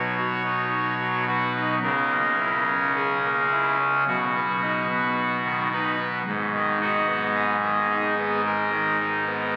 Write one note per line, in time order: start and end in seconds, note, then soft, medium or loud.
0.00 1.79 B1 medium
0.00 1.79 B2 medium
0.00 0.15 F#3 soft
0.00 1.24 C#5 medium
0.18 0.42 F#4 soft
0.45 0.94 D#4 soft
1.00 1.25 F#3 soft
1.28 1.53 F#4 soft
1.28 1.75 B4 medium
1.55 1.79 D#4 soft
1.83 4.04 C#2 medium
1.83 4.03 C#3 medium
1.83 2.92 A#4 medium
2.11 2.36 A#3 soft
2.39 2.64 E4 soft
2.67 3.18 C#4 soft
2.95 4.04 G#4 medium
3.23 3.49 A#3 soft
3.51 3.77 E4 soft
3.80 4.03 C#4 soft
4.08 6.22 B1 medium
4.08 6.22 B2 medium
4.08 5.68 F#4 medium
4.36 4.60 B3 soft
4.62 4.87 D#4 soft
4.90 5.39 B3 soft
5.44 5.69 D#3 soft
5.72 5.97 D#4 soft
5.72 6.19 B4 medium
5.99 6.22 B3 soft
6.26 9.56 G#1 medium
6.26 9.56 G#2 medium
6.53 6.78 D#3 soft
6.81 7.06 D#4 soft
6.81 7.27 F#4 medium
7.08 7.56 B3 medium
7.35 8.41 G#4 medium
7.63 7.87 D#3 soft
7.90 8.14 D#4 medium
8.18 8.42 B3 medium
8.45 8.70 G#3 soft
8.45 9.56 A#4 loud
8.72 8.97 D#3 soft
9.00 9.24 D#4 medium
9.27 9.56 B3 soft